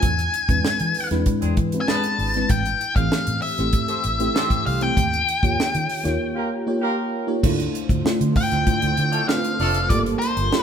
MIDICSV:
0, 0, Header, 1, 8, 480
1, 0, Start_track
1, 0, Key_signature, -1, "minor"
1, 0, Tempo, 617284
1, 25, Time_signature, 4, 2, 24, 8
1, 8265, End_track
2, 0, Start_track
2, 0, Title_t, "Lead electric guitar"
2, 0, Program_c, 0, 29
2, 0, Note_on_c, 0, 80, 77
2, 837, Note_off_c, 0, 80, 0
2, 1408, Note_on_c, 0, 80, 68
2, 1464, Note_off_c, 0, 80, 0
2, 1468, Note_on_c, 0, 81, 98
2, 1946, Note_off_c, 0, 81, 0
2, 1949, Note_on_c, 0, 79, 95
2, 2299, Note_off_c, 0, 79, 0
2, 2302, Note_on_c, 0, 77, 97
2, 2657, Note_off_c, 0, 77, 0
2, 2660, Note_on_c, 0, 76, 87
2, 3625, Note_off_c, 0, 76, 0
2, 3628, Note_on_c, 0, 77, 82
2, 3750, Note_off_c, 0, 77, 0
2, 3750, Note_on_c, 0, 79, 78
2, 5307, Note_off_c, 0, 79, 0
2, 6507, Note_on_c, 0, 79, 107
2, 7217, Note_off_c, 0, 79, 0
2, 7220, Note_on_c, 0, 77, 89
2, 7694, Note_on_c, 0, 74, 91
2, 7715, Note_off_c, 0, 77, 0
2, 7760, Note_off_c, 0, 74, 0
2, 7924, Note_on_c, 0, 72, 87
2, 8265, Note_off_c, 0, 72, 0
2, 8265, End_track
3, 0, Start_track
3, 0, Title_t, "Horn section"
3, 0, Program_c, 1, 61
3, 1100, Note_on_c, 1, 60, 74
3, 1100, Note_on_c, 1, 62, 73
3, 1102, Note_on_c, 1, 56, 81
3, 1102, Note_on_c, 1, 68, 88
3, 1204, Note_off_c, 1, 60, 0
3, 1204, Note_off_c, 1, 62, 0
3, 1205, Note_off_c, 1, 56, 0
3, 1205, Note_off_c, 1, 68, 0
3, 1461, Note_on_c, 1, 56, 84
3, 1461, Note_on_c, 1, 59, 94
3, 1461, Note_on_c, 1, 71, 103
3, 1462, Note_on_c, 1, 62, 86
3, 1805, Note_off_c, 1, 56, 0
3, 1805, Note_off_c, 1, 59, 0
3, 1805, Note_off_c, 1, 62, 0
3, 1805, Note_off_c, 1, 71, 0
3, 3022, Note_on_c, 1, 60, 81
3, 3022, Note_on_c, 1, 67, 77
3, 3022, Note_on_c, 1, 69, 81
3, 3022, Note_on_c, 1, 72, 88
3, 3125, Note_off_c, 1, 60, 0
3, 3125, Note_off_c, 1, 67, 0
3, 3125, Note_off_c, 1, 69, 0
3, 3125, Note_off_c, 1, 72, 0
3, 3378, Note_on_c, 1, 60, 92
3, 3378, Note_on_c, 1, 72, 100
3, 3380, Note_on_c, 1, 67, 90
3, 3380, Note_on_c, 1, 69, 90
3, 3723, Note_off_c, 1, 60, 0
3, 3723, Note_off_c, 1, 72, 0
3, 3724, Note_off_c, 1, 67, 0
3, 3724, Note_off_c, 1, 69, 0
3, 4941, Note_on_c, 1, 65, 82
3, 4943, Note_on_c, 1, 67, 80
3, 4947, Note_on_c, 1, 58, 81
3, 4947, Note_on_c, 1, 70, 88
3, 5044, Note_off_c, 1, 65, 0
3, 5046, Note_off_c, 1, 67, 0
3, 5048, Note_off_c, 1, 58, 0
3, 5048, Note_off_c, 1, 70, 0
3, 5300, Note_on_c, 1, 58, 96
3, 5300, Note_on_c, 1, 70, 104
3, 5302, Note_on_c, 1, 65, 90
3, 5302, Note_on_c, 1, 67, 95
3, 5644, Note_off_c, 1, 58, 0
3, 5644, Note_off_c, 1, 70, 0
3, 5645, Note_off_c, 1, 65, 0
3, 5645, Note_off_c, 1, 67, 0
3, 7093, Note_on_c, 1, 57, 85
3, 7093, Note_on_c, 1, 65, 82
3, 7093, Note_on_c, 1, 69, 92
3, 7094, Note_on_c, 1, 62, 83
3, 7173, Note_off_c, 1, 57, 0
3, 7173, Note_off_c, 1, 62, 0
3, 7173, Note_off_c, 1, 65, 0
3, 7173, Note_off_c, 1, 69, 0
3, 7463, Note_on_c, 1, 57, 95
3, 7463, Note_on_c, 1, 69, 103
3, 7465, Note_on_c, 1, 65, 91
3, 7467, Note_on_c, 1, 62, 92
3, 7616, Note_off_c, 1, 57, 0
3, 7616, Note_off_c, 1, 69, 0
3, 7617, Note_off_c, 1, 65, 0
3, 7618, Note_off_c, 1, 62, 0
3, 8265, End_track
4, 0, Start_track
4, 0, Title_t, "FM electric piano"
4, 0, Program_c, 2, 5
4, 0, Control_c, 2, 64, 127
4, 35, Control_c, 2, 64, 0
4, 161, Control_c, 2, 64, 127
4, 377, Note_on_c, 2, 60, 64
4, 378, Note_on_c, 2, 56, 67
4, 381, Note_on_c, 2, 62, 64
4, 382, Note_on_c, 2, 64, 62
4, 387, Note_on_c, 2, 71, 77
4, 784, Note_off_c, 2, 56, 0
4, 784, Note_off_c, 2, 60, 0
4, 786, Note_off_c, 2, 62, 0
4, 786, Note_off_c, 2, 64, 0
4, 789, Note_off_c, 2, 71, 0
4, 862, Note_on_c, 2, 56, 92
4, 862, Note_on_c, 2, 60, 80
4, 865, Note_on_c, 2, 62, 80
4, 866, Note_on_c, 2, 64, 85
4, 868, Note_on_c, 2, 71, 100
4, 1266, Note_off_c, 2, 56, 0
4, 1267, Note_off_c, 2, 60, 0
4, 1268, Note_off_c, 2, 62, 0
4, 1268, Note_off_c, 2, 64, 0
4, 1269, Note_off_c, 2, 71, 0
4, 1349, Note_on_c, 2, 56, 74
4, 1350, Note_on_c, 2, 60, 71
4, 1352, Note_on_c, 2, 62, 67
4, 1356, Note_on_c, 2, 64, 69
4, 1358, Note_on_c, 2, 71, 82
4, 1750, Note_off_c, 2, 56, 0
4, 1750, Note_off_c, 2, 60, 0
4, 1752, Note_off_c, 2, 62, 0
4, 1754, Note_off_c, 2, 64, 0
4, 1754, Note_off_c, 2, 71, 0
4, 1827, Note_on_c, 2, 56, 69
4, 1830, Note_on_c, 2, 60, 71
4, 1830, Note_on_c, 2, 62, 66
4, 1835, Note_on_c, 2, 71, 75
4, 1836, Note_on_c, 2, 64, 69
4, 1946, Note_off_c, 2, 56, 0
4, 1947, Note_off_c, 2, 62, 0
4, 1948, Note_off_c, 2, 60, 0
4, 1950, Note_off_c, 2, 71, 0
4, 1951, Note_off_c, 2, 64, 0
4, 1954, Control_c, 2, 64, 0
4, 2073, Control_c, 2, 64, 127
4, 2305, Note_on_c, 2, 57, 71
4, 2311, Note_on_c, 2, 60, 67
4, 2314, Note_on_c, 2, 52, 69
4, 2315, Note_on_c, 2, 67, 60
4, 2316, Note_on_c, 2, 72, 74
4, 2708, Note_off_c, 2, 57, 0
4, 2711, Note_off_c, 2, 60, 0
4, 2712, Note_off_c, 2, 52, 0
4, 2713, Note_off_c, 2, 67, 0
4, 2713, Note_off_c, 2, 72, 0
4, 2781, Note_on_c, 2, 57, 76
4, 2786, Note_on_c, 2, 64, 66
4, 2787, Note_on_c, 2, 60, 72
4, 2789, Note_on_c, 2, 67, 69
4, 2792, Note_on_c, 2, 72, 85
4, 3186, Note_off_c, 2, 57, 0
4, 3189, Note_off_c, 2, 60, 0
4, 3189, Note_off_c, 2, 64, 0
4, 3190, Note_off_c, 2, 67, 0
4, 3191, Note_off_c, 2, 72, 0
4, 3260, Note_on_c, 2, 60, 80
4, 3261, Note_on_c, 2, 57, 92
4, 3267, Note_on_c, 2, 64, 82
4, 3269, Note_on_c, 2, 67, 90
4, 3269, Note_on_c, 2, 72, 100
4, 3665, Note_off_c, 2, 60, 0
4, 3666, Note_off_c, 2, 57, 0
4, 3669, Note_off_c, 2, 64, 0
4, 3670, Note_off_c, 2, 67, 0
4, 3670, Note_off_c, 2, 72, 0
4, 3736, Note_on_c, 2, 57, 78
4, 3738, Note_on_c, 2, 60, 66
4, 3739, Note_on_c, 2, 64, 63
4, 3744, Note_on_c, 2, 67, 64
4, 3748, Note_on_c, 2, 72, 81
4, 3860, Note_off_c, 2, 57, 0
4, 3861, Note_off_c, 2, 60, 0
4, 3862, Note_off_c, 2, 64, 0
4, 3864, Note_off_c, 2, 67, 0
4, 3866, Note_off_c, 2, 72, 0
4, 3876, Control_c, 2, 64, 0
4, 4009, Control_c, 2, 64, 127
4, 4220, Note_on_c, 2, 58, 71
4, 4221, Note_on_c, 2, 63, 62
4, 4224, Note_on_c, 2, 65, 66
4, 4225, Note_on_c, 2, 67, 67
4, 4230, Note_on_c, 2, 73, 79
4, 4625, Note_off_c, 2, 58, 0
4, 4626, Note_off_c, 2, 63, 0
4, 4627, Note_off_c, 2, 65, 0
4, 4628, Note_off_c, 2, 67, 0
4, 4630, Note_off_c, 2, 73, 0
4, 4693, Note_on_c, 2, 58, 95
4, 4697, Note_on_c, 2, 63, 82
4, 4699, Note_on_c, 2, 65, 90
4, 4704, Note_on_c, 2, 67, 83
4, 4705, Note_on_c, 2, 73, 108
4, 5102, Note_off_c, 2, 58, 0
4, 5104, Note_off_c, 2, 63, 0
4, 5104, Note_off_c, 2, 65, 0
4, 5107, Note_off_c, 2, 67, 0
4, 5107, Note_off_c, 2, 73, 0
4, 5184, Note_on_c, 2, 58, 88
4, 5185, Note_on_c, 2, 63, 86
4, 5186, Note_on_c, 2, 65, 83
4, 5191, Note_on_c, 2, 67, 84
4, 5192, Note_on_c, 2, 73, 102
4, 5587, Note_off_c, 2, 58, 0
4, 5587, Note_off_c, 2, 63, 0
4, 5588, Note_off_c, 2, 65, 0
4, 5591, Note_off_c, 2, 67, 0
4, 5591, Note_off_c, 2, 73, 0
4, 5654, Note_on_c, 2, 63, 75
4, 5656, Note_on_c, 2, 58, 91
4, 5659, Note_on_c, 2, 65, 77
4, 5662, Note_on_c, 2, 67, 81
4, 5663, Note_on_c, 2, 73, 98
4, 5778, Note_off_c, 2, 65, 0
4, 5779, Note_off_c, 2, 63, 0
4, 5779, Note_on_c, 2, 57, 95
4, 5780, Note_off_c, 2, 58, 0
4, 5783, Note_off_c, 2, 67, 0
4, 5783, Note_on_c, 2, 62, 89
4, 5784, Note_off_c, 2, 73, 0
4, 5787, Note_on_c, 2, 64, 89
4, 5787, Note_on_c, 2, 65, 92
4, 5790, Note_on_c, 2, 72, 102
4, 5794, Control_c, 2, 64, 0
4, 5925, Control_c, 2, 64, 127
4, 6184, Note_off_c, 2, 57, 0
4, 6186, Note_off_c, 2, 62, 0
4, 6188, Note_off_c, 2, 64, 0
4, 6188, Note_off_c, 2, 65, 0
4, 6190, Note_off_c, 2, 72, 0
4, 6256, Note_on_c, 2, 57, 97
4, 6262, Note_on_c, 2, 62, 89
4, 6262, Note_on_c, 2, 64, 85
4, 6263, Note_on_c, 2, 65, 88
4, 6268, Note_on_c, 2, 72, 104
4, 6663, Note_off_c, 2, 57, 0
4, 6666, Note_off_c, 2, 62, 0
4, 6666, Note_off_c, 2, 64, 0
4, 6666, Note_off_c, 2, 65, 0
4, 6669, Note_off_c, 2, 72, 0
4, 6732, Note_on_c, 2, 57, 69
4, 6737, Note_on_c, 2, 62, 70
4, 6739, Note_on_c, 2, 64, 66
4, 6740, Note_on_c, 2, 65, 64
4, 6743, Note_on_c, 2, 72, 84
4, 7140, Note_off_c, 2, 57, 0
4, 7143, Note_off_c, 2, 62, 0
4, 7144, Note_off_c, 2, 64, 0
4, 7144, Note_off_c, 2, 65, 0
4, 7146, Note_off_c, 2, 72, 0
4, 7207, Note_on_c, 2, 57, 80
4, 7210, Note_on_c, 2, 62, 69
4, 7213, Note_on_c, 2, 60, 73
4, 7216, Note_on_c, 2, 71, 71
4, 7217, Note_on_c, 2, 65, 73
4, 7270, Note_off_c, 2, 71, 0
4, 7271, Note_on_c, 2, 72, 89
4, 7617, Note_off_c, 2, 57, 0
4, 7619, Note_off_c, 2, 62, 0
4, 7621, Note_off_c, 2, 60, 0
4, 7622, Note_off_c, 2, 65, 0
4, 7649, Note_off_c, 2, 72, 0
4, 7697, Note_on_c, 2, 57, 60
4, 7697, Note_on_c, 2, 62, 65
4, 7700, Note_on_c, 2, 65, 68
4, 7702, Note_on_c, 2, 67, 67
4, 7707, Note_on_c, 2, 69, 83
4, 7714, Control_c, 2, 64, 0
4, 7746, Note_on_c, 2, 58, 80
4, 7750, Note_off_c, 2, 57, 0
4, 7863, Control_c, 2, 64, 127
4, 8102, Note_off_c, 2, 62, 0
4, 8104, Note_off_c, 2, 65, 0
4, 8105, Note_off_c, 2, 67, 0
4, 8107, Note_off_c, 2, 69, 0
4, 8127, Note_off_c, 2, 58, 0
4, 8182, Note_on_c, 2, 58, 80
4, 8186, Note_on_c, 2, 62, 73
4, 8186, Note_on_c, 2, 67, 76
4, 8188, Note_on_c, 2, 65, 74
4, 8189, Note_on_c, 2, 70, 85
4, 8265, Note_off_c, 2, 58, 0
4, 8265, Note_off_c, 2, 62, 0
4, 8265, Note_off_c, 2, 65, 0
4, 8265, Note_off_c, 2, 67, 0
4, 8265, Note_off_c, 2, 70, 0
4, 8265, End_track
5, 0, Start_track
5, 0, Title_t, "String section"
5, 0, Program_c, 3, 48
5, 5789, Note_on_c, 3, 57, 68
5, 5791, Note_on_c, 3, 53, 82
5, 5793, Note_on_c, 3, 50, 76
5, 5795, Note_on_c, 3, 60, 63
5, 7686, Note_off_c, 3, 57, 0
5, 7688, Note_off_c, 3, 50, 0
5, 7689, Note_off_c, 3, 60, 0
5, 7691, Note_on_c, 3, 55, 74
5, 7692, Note_on_c, 3, 58, 75
5, 7696, Note_on_c, 3, 81, 67
5, 8265, Note_off_c, 3, 53, 0
5, 8265, Note_off_c, 3, 55, 0
5, 8265, Note_off_c, 3, 58, 0
5, 8265, Note_off_c, 3, 81, 0
5, 8265, End_track
6, 0, Start_track
6, 0, Title_t, "Fingered electric bass"
6, 0, Program_c, 4, 33
6, 24, Note_on_c, 4, 40, 96
6, 204, Note_off_c, 4, 40, 0
6, 381, Note_on_c, 4, 40, 94
6, 472, Note_off_c, 4, 40, 0
6, 625, Note_on_c, 4, 52, 84
6, 715, Note_off_c, 4, 52, 0
6, 862, Note_on_c, 4, 40, 87
6, 953, Note_off_c, 4, 40, 0
6, 1109, Note_on_c, 4, 40, 92
6, 1197, Note_off_c, 4, 40, 0
6, 1224, Note_on_c, 4, 52, 94
6, 1404, Note_off_c, 4, 52, 0
6, 1699, Note_on_c, 4, 32, 88
6, 1881, Note_off_c, 4, 32, 0
6, 1943, Note_on_c, 4, 33, 84
6, 2123, Note_off_c, 4, 33, 0
6, 2302, Note_on_c, 4, 33, 92
6, 2393, Note_off_c, 4, 33, 0
6, 2545, Note_on_c, 4, 45, 93
6, 2635, Note_off_c, 4, 45, 0
6, 2788, Note_on_c, 4, 33, 91
6, 2877, Note_off_c, 4, 33, 0
6, 3146, Note_on_c, 4, 33, 91
6, 3325, Note_off_c, 4, 33, 0
6, 3628, Note_on_c, 4, 36, 78
6, 3806, Note_off_c, 4, 36, 0
6, 3865, Note_on_c, 4, 39, 85
6, 4044, Note_off_c, 4, 39, 0
6, 4222, Note_on_c, 4, 39, 80
6, 4313, Note_off_c, 4, 39, 0
6, 4468, Note_on_c, 4, 51, 98
6, 4556, Note_off_c, 4, 51, 0
6, 4705, Note_on_c, 4, 39, 89
6, 4794, Note_off_c, 4, 39, 0
6, 5783, Note_on_c, 4, 38, 91
6, 5963, Note_off_c, 4, 38, 0
6, 6138, Note_on_c, 4, 38, 94
6, 6230, Note_off_c, 4, 38, 0
6, 6381, Note_on_c, 4, 50, 97
6, 6472, Note_off_c, 4, 50, 0
6, 6624, Note_on_c, 4, 38, 81
6, 6714, Note_off_c, 4, 38, 0
6, 6864, Note_on_c, 4, 38, 96
6, 6953, Note_off_c, 4, 38, 0
6, 6981, Note_on_c, 4, 50, 93
6, 7161, Note_off_c, 4, 50, 0
6, 7461, Note_on_c, 4, 29, 87
6, 7700, Note_off_c, 4, 29, 0
6, 7700, Note_on_c, 4, 31, 105
6, 7880, Note_off_c, 4, 31, 0
6, 8062, Note_on_c, 4, 31, 94
6, 8152, Note_off_c, 4, 31, 0
6, 8265, End_track
7, 0, Start_track
7, 0, Title_t, "Muted fingered electric bass strokes"
7, 508, Note_on_c, 9, 29, 44
7, 586, Note_off_c, 9, 29, 0
7, 6265, Note_on_c, 9, 29, 45
7, 6343, Note_off_c, 9, 29, 0
7, 8265, End_track
8, 0, Start_track
8, 0, Title_t, "Drums"
8, 19, Note_on_c, 9, 42, 88
8, 22, Note_on_c, 9, 36, 109
8, 97, Note_off_c, 9, 42, 0
8, 100, Note_off_c, 9, 36, 0
8, 146, Note_on_c, 9, 42, 55
8, 223, Note_off_c, 9, 42, 0
8, 263, Note_on_c, 9, 42, 69
8, 340, Note_off_c, 9, 42, 0
8, 379, Note_on_c, 9, 36, 96
8, 382, Note_on_c, 9, 42, 50
8, 457, Note_off_c, 9, 36, 0
8, 460, Note_off_c, 9, 42, 0
8, 502, Note_on_c, 9, 38, 105
8, 580, Note_off_c, 9, 38, 0
8, 618, Note_on_c, 9, 42, 54
8, 696, Note_off_c, 9, 42, 0
8, 734, Note_on_c, 9, 46, 79
8, 812, Note_off_c, 9, 46, 0
8, 862, Note_on_c, 9, 42, 51
8, 865, Note_on_c, 9, 38, 36
8, 940, Note_off_c, 9, 42, 0
8, 943, Note_off_c, 9, 38, 0
8, 979, Note_on_c, 9, 42, 74
8, 982, Note_on_c, 9, 36, 92
8, 1056, Note_off_c, 9, 42, 0
8, 1060, Note_off_c, 9, 36, 0
8, 1104, Note_on_c, 9, 42, 53
8, 1182, Note_off_c, 9, 42, 0
8, 1220, Note_on_c, 9, 42, 71
8, 1223, Note_on_c, 9, 36, 96
8, 1298, Note_off_c, 9, 42, 0
8, 1301, Note_off_c, 9, 36, 0
8, 1339, Note_on_c, 9, 42, 52
8, 1417, Note_off_c, 9, 42, 0
8, 1464, Note_on_c, 9, 38, 127
8, 1541, Note_off_c, 9, 38, 0
8, 1583, Note_on_c, 9, 42, 54
8, 1660, Note_off_c, 9, 42, 0
8, 1706, Note_on_c, 9, 46, 71
8, 1784, Note_off_c, 9, 46, 0
8, 1820, Note_on_c, 9, 42, 48
8, 1828, Note_on_c, 9, 38, 33
8, 1897, Note_off_c, 9, 42, 0
8, 1906, Note_off_c, 9, 38, 0
8, 1939, Note_on_c, 9, 42, 88
8, 1942, Note_on_c, 9, 36, 107
8, 2017, Note_off_c, 9, 42, 0
8, 2020, Note_off_c, 9, 36, 0
8, 2065, Note_on_c, 9, 42, 55
8, 2143, Note_off_c, 9, 42, 0
8, 2184, Note_on_c, 9, 42, 72
8, 2262, Note_off_c, 9, 42, 0
8, 2300, Note_on_c, 9, 36, 98
8, 2307, Note_on_c, 9, 42, 51
8, 2378, Note_off_c, 9, 36, 0
8, 2385, Note_off_c, 9, 42, 0
8, 2425, Note_on_c, 9, 38, 108
8, 2503, Note_off_c, 9, 38, 0
8, 2541, Note_on_c, 9, 42, 57
8, 2619, Note_off_c, 9, 42, 0
8, 2658, Note_on_c, 9, 46, 82
8, 2736, Note_off_c, 9, 46, 0
8, 2783, Note_on_c, 9, 42, 52
8, 2787, Note_on_c, 9, 38, 36
8, 2861, Note_off_c, 9, 42, 0
8, 2864, Note_off_c, 9, 38, 0
8, 2898, Note_on_c, 9, 42, 77
8, 2902, Note_on_c, 9, 36, 92
8, 2976, Note_off_c, 9, 42, 0
8, 2979, Note_off_c, 9, 36, 0
8, 3019, Note_on_c, 9, 42, 57
8, 3097, Note_off_c, 9, 42, 0
8, 3139, Note_on_c, 9, 42, 75
8, 3217, Note_off_c, 9, 42, 0
8, 3265, Note_on_c, 9, 42, 52
8, 3343, Note_off_c, 9, 42, 0
8, 3389, Note_on_c, 9, 38, 126
8, 3467, Note_off_c, 9, 38, 0
8, 3502, Note_on_c, 9, 36, 89
8, 3506, Note_on_c, 9, 42, 54
8, 3580, Note_off_c, 9, 36, 0
8, 3584, Note_off_c, 9, 42, 0
8, 3628, Note_on_c, 9, 46, 75
8, 3705, Note_off_c, 9, 46, 0
8, 3741, Note_on_c, 9, 42, 53
8, 3819, Note_off_c, 9, 42, 0
8, 3865, Note_on_c, 9, 36, 99
8, 3868, Note_on_c, 9, 42, 88
8, 3943, Note_off_c, 9, 36, 0
8, 3946, Note_off_c, 9, 42, 0
8, 3993, Note_on_c, 9, 42, 51
8, 4071, Note_off_c, 9, 42, 0
8, 4110, Note_on_c, 9, 42, 73
8, 4188, Note_off_c, 9, 42, 0
8, 4222, Note_on_c, 9, 36, 96
8, 4233, Note_on_c, 9, 42, 51
8, 4300, Note_off_c, 9, 36, 0
8, 4310, Note_off_c, 9, 42, 0
8, 4355, Note_on_c, 9, 38, 107
8, 4432, Note_off_c, 9, 38, 0
8, 4468, Note_on_c, 9, 42, 55
8, 4546, Note_off_c, 9, 42, 0
8, 4583, Note_on_c, 9, 46, 83
8, 4661, Note_off_c, 9, 46, 0
8, 4706, Note_on_c, 9, 42, 55
8, 4710, Note_on_c, 9, 38, 38
8, 4784, Note_off_c, 9, 42, 0
8, 4788, Note_off_c, 9, 38, 0
8, 5781, Note_on_c, 9, 36, 108
8, 5783, Note_on_c, 9, 49, 94
8, 5859, Note_off_c, 9, 36, 0
8, 5861, Note_off_c, 9, 49, 0
8, 5907, Note_on_c, 9, 42, 57
8, 5985, Note_off_c, 9, 42, 0
8, 6027, Note_on_c, 9, 42, 72
8, 6105, Note_off_c, 9, 42, 0
8, 6138, Note_on_c, 9, 36, 98
8, 6144, Note_on_c, 9, 42, 51
8, 6216, Note_off_c, 9, 36, 0
8, 6221, Note_off_c, 9, 42, 0
8, 6265, Note_on_c, 9, 38, 110
8, 6343, Note_off_c, 9, 38, 0
8, 6384, Note_on_c, 9, 42, 55
8, 6461, Note_off_c, 9, 42, 0
8, 6498, Note_on_c, 9, 46, 83
8, 6500, Note_on_c, 9, 36, 88
8, 6576, Note_off_c, 9, 46, 0
8, 6577, Note_off_c, 9, 36, 0
8, 6623, Note_on_c, 9, 42, 52
8, 6626, Note_on_c, 9, 38, 39
8, 6701, Note_off_c, 9, 42, 0
8, 6704, Note_off_c, 9, 38, 0
8, 6740, Note_on_c, 9, 42, 78
8, 6741, Note_on_c, 9, 36, 93
8, 6818, Note_off_c, 9, 36, 0
8, 6818, Note_off_c, 9, 42, 0
8, 6859, Note_on_c, 9, 42, 53
8, 6937, Note_off_c, 9, 42, 0
8, 6977, Note_on_c, 9, 42, 74
8, 7055, Note_off_c, 9, 42, 0
8, 7096, Note_on_c, 9, 42, 54
8, 7174, Note_off_c, 9, 42, 0
8, 7225, Note_on_c, 9, 38, 116
8, 7302, Note_off_c, 9, 38, 0
8, 7344, Note_on_c, 9, 42, 54
8, 7421, Note_off_c, 9, 42, 0
8, 7462, Note_on_c, 9, 46, 77
8, 7540, Note_off_c, 9, 46, 0
8, 7576, Note_on_c, 9, 42, 53
8, 7654, Note_off_c, 9, 42, 0
8, 7699, Note_on_c, 9, 36, 111
8, 7701, Note_on_c, 9, 42, 87
8, 7777, Note_off_c, 9, 36, 0
8, 7778, Note_off_c, 9, 42, 0
8, 7825, Note_on_c, 9, 42, 54
8, 7903, Note_off_c, 9, 42, 0
8, 7944, Note_on_c, 9, 42, 77
8, 8022, Note_off_c, 9, 42, 0
8, 8063, Note_on_c, 9, 42, 53
8, 8140, Note_off_c, 9, 42, 0
8, 8185, Note_on_c, 9, 38, 109
8, 8262, Note_off_c, 9, 38, 0
8, 8265, End_track
0, 0, End_of_file